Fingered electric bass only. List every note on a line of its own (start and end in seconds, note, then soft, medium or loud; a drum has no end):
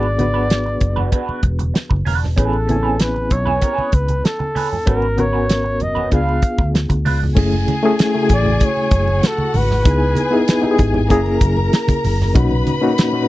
0.00 0.77 G#1 loud
0.81 1.08 F#1 medium
1.29 muted fingered electric bass stroke soft
1.43 1.71 E1 loud
1.91 2.04 F#1 medium
2.07 2.34 E1 loud
2.38 3.31 A1 loud
3.31 3.58 B1 medium
3.78 muted fingered electric bass stroke soft
3.93 4.21 C#2 medium
4.88 5.82 G#1 medium
5.82 6.08 F#1 medium
6.12 6.39 C#2 medium
6.59 6.86 D2 medium
6.90 7.07 D2 medium
7.06 7.33 C#2 medium
7.37 7.64 F#1 medium
8.30 8.57 A1 loud
8.92 9.19 F#1 loud
9.55 9.82 G#1 loud
9.86 10.13 C#2 loud
10.80 11.10 G#1 medium
11.11 11.38 F#1 loud
11.41 11.69 F#1 loud
12.04 12.31 F#1 loud
12.36 12.63 B1 loud